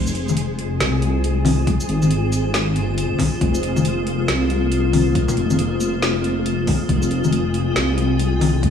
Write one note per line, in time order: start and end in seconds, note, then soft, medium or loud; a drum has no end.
0.00 0.79 F1 loud
0.00 8.70 G#3 medium
0.00 8.70 F4 medium
0.00 3.44 G#4 medium
0.00 6.92 C5 medium
0.07 shaker medium
0.15 closed hi-hat medium
0.29 high conga medium
0.29 shaker medium
0.37 closed hi-hat medium
0.59 closed hi-hat medium
0.80 1.66 C2 loud
0.80 snare loud
0.80 closed hi-hat medium
1.02 closed hi-hat medium
1.24 closed hi-hat medium
1.45 open hi-hat loud
1.45 high conga loud
1.67 kick loud
1.67 closed hi-hat medium
1.80 shaker medium
1.89 2.74 G#1 loud
1.89 closed hi-hat medium
2.02 high conga medium
2.02 shaker medium
2.11 closed hi-hat medium
2.32 closed hi-hat medium
2.32 shaker medium
2.54 snare loud
2.54 closed hi-hat medium
2.76 3.18 G1 loud
2.76 closed hi-hat medium
2.98 closed hi-hat medium
3.19 kick medium
3.19 open hi-hat loud
3.19 high conga loud
3.41 4.27 F1 loud
3.41 6.92 A#3 medium
3.41 kick loud
3.41 closed hi-hat medium
3.55 shaker medium
3.63 closed hi-hat medium
3.76 high conga medium
3.76 shaker medium
3.85 closed hi-hat medium
4.07 closed hi-hat medium
4.28 5.14 C2 loud
4.28 snare loud
4.28 closed hi-hat medium
4.50 closed hi-hat medium
4.72 closed hi-hat medium
4.93 open hi-hat medium
4.93 high conga loud
5.15 kick loud
5.15 closed hi-hat medium
5.28 low conga medium
5.28 shaker medium
5.37 6.66 F1 loud
5.37 closed hi-hat medium
5.50 high conga medium
5.50 shaker medium
5.59 closed hi-hat medium
5.80 closed hi-hat medium
5.80 shaker medium
6.02 snare loud
6.02 closed hi-hat medium
6.24 closed hi-hat medium
6.46 closed hi-hat medium
6.67 kick medium
6.67 open hi-hat medium
6.67 high conga loud
6.89 7.75 F1 loud
6.89 8.70 G#4 medium
6.89 8.70 G5 medium
6.89 kick loud
6.89 closed hi-hat medium
7.02 shaker medium
7.11 closed hi-hat medium
7.24 high conga medium
7.24 shaker medium
7.33 closed hi-hat medium
7.54 closed hi-hat medium
7.76 8.62 C2 loud
7.76 snare loud
7.76 closed hi-hat medium
7.98 closed hi-hat medium
8.19 closed hi-hat medium
8.41 open hi-hat medium
8.41 high conga loud
8.63 kick loud
8.63 closed hi-hat medium